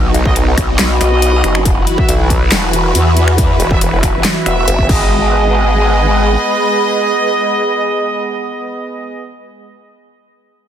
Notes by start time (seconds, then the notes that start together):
Already playing: B1 F#3 B3 D#4 F#4 D#5 B5
0.14 B1, closed hi-hat
0.25 B3 F#4 D#5, kick
0.36 closed hi-hat
0.57 B1, finger snap, kick, closed hi-hat
0.79 B1, snare, clap, closed hi-hat
1.01 B1 B3 F#4 D#5, finger snap, closed hi-hat
1.22 closed hi-hat
1.44 F#1, finger snap, closed hi-hat
1.55 finger snap
1.65 E1 E3 E4 F#4 B4, kick, closed hi-hat
1.87 closed hi-hat
1.98 B3 F#4 E5, kick
2.09 B1, closed hi-hat
2.30 kick, closed hi-hat
2.52 E1 E5, snare, clap, closed hi-hat
2.73 closed hi-hat
2.95 E2, closed hi-hat
3.17 closed hi-hat
3.28 finger snap
3.38 kick, closed hi-hat
3.60 E1, closed hi-hat
3.71 B3 F#4 E5, kick
3.81 closed hi-hat
4.03 E1, finger snap, kick, closed hi-hat
4.25 snare, clap, closed hi-hat
4.46 E1 B3 F#4 E5, finger snap, closed hi-hat
4.68 F#1, closed hi-hat
4.79 kick
4.89 G#1 G#3 B3 G#4 B4 D#5, kick, crash
4.96 D#5
5.24 B5